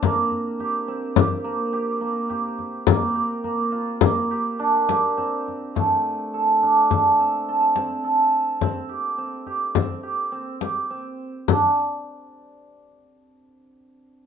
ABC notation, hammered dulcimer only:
X:1
M:5/4
L:1/8
Q:1/4=105
K:Cmix
V:1 name="Hammered dulcimer"
B,2 G C G B, G B, G2 | B, G B, F B, G D G C2 | A,2 A D A C A C A2 | C G C G C G C G C2 |
D z8 z |]